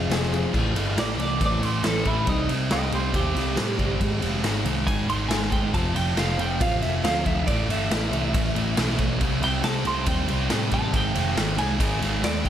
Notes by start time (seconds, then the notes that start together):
Already playing: F2 C3 F3 C4 F4 G#4
0.09 F1 F3 C4 F4 G#4, snare, ride
0.23 snare
0.31 F2 C3 F3 C4 F4 G#4, ride
0.53 A1 A2 E3 A3 C4, kick, crash
0.75 G1 A2 E3 A3, ride
0.97 A1 A2 E3 A3 D5, snare, ride
1.18 C2 A2 E3 A3, ride
1.23 D5
1.41 A1 A2 E3 A3 C4, kick, ride
1.46 D5
1.62 A1 A2 E3 A3 C5, ride
1.83 A1 A2 E3 A3 C4 A4, snare, ride
2.05 A2 E3 A3 E4, kick, ride
2.27 C2 C3 G3 C4 D#4, kick, ride
2.48 C2 C3 G3 C4, ride
2.70 C2 C3 G3 C4 D#5 G5, snare, ride
2.91 C2 C3 G3 C4 G4, ride
2.95 C5
3.12 D#2 C3 G3 C4 G4, kick, ride
3.34 C2 C3 G3 C4, snare, ride
3.56 A2 C3 G3 C4, snare, ride
3.78 G1 C3 G3 C4, kick, ride
4.00 G#1 G#2 D#3 G#3, kick, ride
4.21 F1 G#2 D#3 G#3, ride
4.44 G#1 G#2 D#3 G#3, snare, ride
4.64 C2 G#2 D#3 G#3, ride
4.87 G#1 G#2 D#3 G#3 G#5, kick, ride
5.06 G#1 G#2 D#3 C6, ride
5.10 G#3
5.29 G#1 G#2 D#3 G#3 G#5, snare, ride
5.52 G#2 D#3 G#3 G5, kick, ride
5.74 F1 F2 C3 F3 C4 F4 A5, kick, ride
5.95 F1 F2 C3 F3 C4 G5, ride
6.15 F1 F2 C3 F3 C4 F5, snare, ride
6.38 F1 F2 C3 F3 C4 G5, ride
6.60 A1 F2 C3 F3 C4 F4 F5, kick, ride
6.81 F1 F2 C3 F3 C4 E5, snare, ride
7.03 D2 F2 C3 F3 C4 F4 F5, snare, ride
7.26 D2 F2 C3 F3 C4 E5, kick, ride
7.47 A1 A2 E3 A3 D5, kick, ride
7.68 G1 A2 E3 A3 E5, ride
7.91 A1 A2 E3 A3, snare, ride
8.12 C2 A2 E3 A3, ride
8.34 A1 A2 E3 A3, kick, ride
8.55 A1 A2 E3 A3, ride
8.77 B1 A2 E3 A3, snare, ride
8.98 A2 E3 A3, kick, ride
9.20 C2 C3 G3 C4, kick, ride
9.41 C2 C3 G3 C4 G5, ride
9.62 C2 C3 G3 C4 A5, snare, ride
9.85 C2 C3 G3 C4 C6, ride
10.06 D#2 C3 G3 C4 G5, kick, ride
10.28 C2 C3 G3 C4, ride
10.49 A2 C3 G3 C4, snare, ride
10.71 A1 C3 G3 C4 A5, kick, ride
10.93 G#1 G#2 D#3 G#3 G5, kick, ride
11.15 F1 G#2 D#3 G#3, ride
11.36 G#1 G#2 D#3 G#3, snare, ride
11.57 C2 G#2 D#3 G#3 G#5, ride
11.79 G#1 G#2 D#3 G#3, kick, ride
12.00 G#1 G#2 D#3 G#3, snare, ride
12.22 D#2 G#2 D#3 G#3 D5, snare, ride
12.44 G#2 D#3 G#3 G5, kick, ride